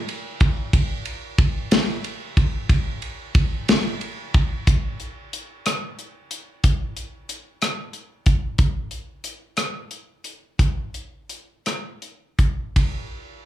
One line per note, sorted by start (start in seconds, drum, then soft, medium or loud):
0.09 ride soft
0.40 kick medium
0.40 ride soft
0.73 kick medium
0.73 ride medium
1.05 ride soft
1.38 kick medium
1.38 ride soft
1.71 snare loud
1.71 ride medium
2.04 ride soft
2.37 kick medium
2.37 ride soft
2.69 kick loud
2.69 ride medium
3.02 ride soft
3.35 kick loud
3.35 ride soft
3.68 snare loud
3.68 ride medium
4.01 ride soft
4.34 kick medium
4.34 ride soft
4.67 kick medium
4.67 closed hi-hat medium
5.00 closed hi-hat soft
5.33 closed hi-hat medium
5.66 cross-stick medium
5.66 closed hi-hat medium
5.99 closed hi-hat soft
6.31 closed hi-hat medium
6.64 kick medium
6.64 closed hi-hat medium
6.97 closed hi-hat soft
7.29 closed hi-hat medium
7.62 cross-stick medium
7.62 closed hi-hat medium
7.93 closed hi-hat soft
8.26 kick medium
8.26 closed hi-hat medium
8.58 kick medium
8.58 closed hi-hat medium
8.91 closed hi-hat soft
9.24 closed hi-hat medium
9.57 cross-stick medium
9.57 closed hi-hat medium
9.91 closed hi-hat soft
10.24 closed hi-hat soft
10.59 kick medium
10.59 closed hi-hat medium
10.94 closed hi-hat soft
11.29 closed hi-hat medium
11.66 cross-stick medium
11.66 closed hi-hat medium
12.02 closed hi-hat soft
12.39 kick medium
12.39 closed hi-hat soft
12.76 kick medium
12.76 ride soft